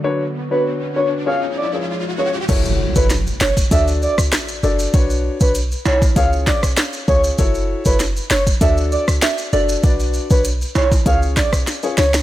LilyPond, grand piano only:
\new Staff \with { instrumentName = "Grand piano" } { \time 4/4 \key fis \minor \tempo 4 = 98 <d' fis' b' cis''>16 r8 <d' fis' b' cis''>8. <d' fis' b' cis''>8 <cis' eis' gis' cis''>8. <cis' eis' gis' cis''>16 r8 <cis' eis' gis' cis''>16 r16 | <e' fis' a' cis''>8. <e' fis' a' cis''>16 r4 <d' fis' a' d''>4. <d' fis' a' d''>8 | <d' fis' b' cis''>8. <d' fis' b' cis''>16 r4 <cis' eis' gis' cis''>4. <cis' eis' gis' cis''>8 | <e' fis' a' cis''>8. <e' fis' a' cis''>16 r4 <d' fis' a' d''>4. <d' fis' a' d''>8 |
<d' fis' b' d''>8. <d' fis' b' cis''>16 r4 <cis' eis' gis' cis''>4~ <cis' eis' gis' cis''>16 <cis' eis' gis' cis''>16 r8 | }